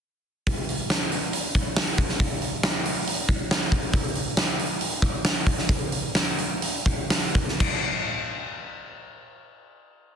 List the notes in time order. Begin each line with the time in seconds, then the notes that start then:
0.46 kick, open hi-hat
0.69 open hi-hat
0.90 snare, open hi-hat
1.11 open hi-hat
1.33 open hi-hat
1.55 kick, open hi-hat
1.76 snare, open hi-hat
1.98 kick, open hi-hat
2.09 snare
2.20 kick, open hi-hat
2.42 open hi-hat
2.63 snare, open hi-hat
2.85 open hi-hat
3.07 open hi-hat
3.29 kick, open hi-hat
3.51 snare, open hi-hat
3.72 kick, open hi-hat
3.93 kick, open hi-hat
4.15 open hi-hat
4.37 snare, open hi-hat
4.59 open hi-hat
4.81 open hi-hat
5.02 kick, open hi-hat
5.24 snare, open hi-hat
5.47 kick, open hi-hat
5.58 snare
5.69 kick, open hi-hat
5.92 open hi-hat
6.15 snare, open hi-hat
6.38 open hi-hat
6.62 open hi-hat
6.86 kick, open hi-hat
7.10 snare, open hi-hat
7.35 kick, open hi-hat
7.48 snare
7.60 kick, crash